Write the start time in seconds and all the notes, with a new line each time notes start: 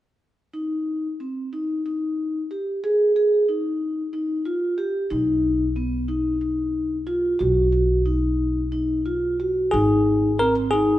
0.54 D#4
1.20 C4
1.53 D#4
1.86 D#4
2.51 G4
2.84 G#4
3.16 G#4
3.49 D#4
4.13 D#4
4.45 F4
4.78 G4
5.10 B1 D#4
5.76 B3
6.08 D#4
6.41 D#4
7.07 F4
7.39 B1 F#4
7.72 F#4
8.06 D#4
8.72 D#4
9.06 F4
9.40 F#4
9.71 G#1 D#4 G#4
10.39 C4 A#4
10.71 D#4 G#4